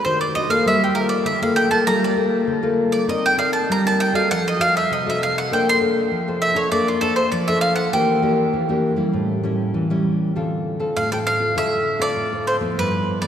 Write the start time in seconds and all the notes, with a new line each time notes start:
0.05 D#3 D4 F#4 C5
0.21 D5
0.35 D4 F#4 C5 D#5
0.49 A#3 F4 A4 F5
0.66 G3 E5
0.84 G4
0.94 A#3 F4 A4 A#4
1.09 D5
1.25 D3 E5
1.42 A#3 F4 A4 F5
1.56 G5
1.71 A#3 F4 A4 A5
1.87 G3 A#3 F4 A4 A#5
2.04 D5
2.17 A#3 F4 A4
2.47 D3
2.62 A#3 F4 A4
2.92 D5
3.08 C4 D#4 A#4 D5 D#5
3.26 G5
3.37 D#4 A#4 D5 F5
3.53 A5
3.69 G3 A#5
3.85 D#4 A#4 D5 A5
4.00 G5
4.13 F#4 A4 D#5 F5
4.31 F3 F#5
4.48 D#5
4.59 F#4 A4 D#5 F5
4.77 E5
4.91 C3 D#5
5.06 F#4 A4 D#5 E5
5.23 F5
5.38 F#5
5.51 A#3 D4 A4 C5 G5
5.69 C6
5.81 D4 A4 C5
6.11 F3
6.28 D4 A4 C5
6.42 E5
6.55 D4 A4 C5 C#5
6.72 A#3 D4 A4 C5 D5
6.88 F4
7.01 D4 A4 C5
7.16 C5
7.32 F3 D5
7.48 D4 A4 C5 E5
7.61 F5
7.76 F#5
7.93 E3 A#3 D4 G4 G5
8.22 A#3 D4 G4
8.53 E3
8.69 A#3 D4 G4
8.96 G3 C#4 E4
9.13 A2
9.43 G3 C#4 E4
9.74 E3
9.90 G3 C#4 E4
10.36 D3 C4 F4 A4
10.79 C4 F4 A4
10.96 A2 F5
11.12 C4 F4 A4 G5
11.27 F5
11.40 C4 F4 A4
11.56 D3 C4 F4 A4 E5
11.99 C4 F4 A4 D5
12.16 A2
12.32 C4 F4 A4
12.47 C5
12.61 F3 B3 E4
12.77 G2 B4
13.21 F3 B3 E4 D5